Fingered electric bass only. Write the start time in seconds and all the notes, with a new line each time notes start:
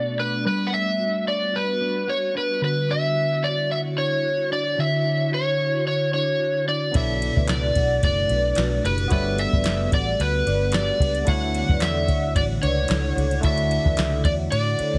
6.95 B1
7.37 D2
7.49 C#2
7.76 B1
8.03 F#1
8.30 B1
8.57 B1
8.84 F#1
9.11 G1
9.53 A1
9.65 F#1
9.92 A1
10.19 D2
10.46 G1
11.00 C#2
11.27 D2
11.69 F#2
11.81 E2
12.08 D2
12.35 A1
12.63 C#2
12.89 C#2
13.16 C#2
13.43 D2
13.85 E2
13.98 C#2
14.24 E2
14.52 A2
14.79 muted fingered electric bass stroke
14.94 D2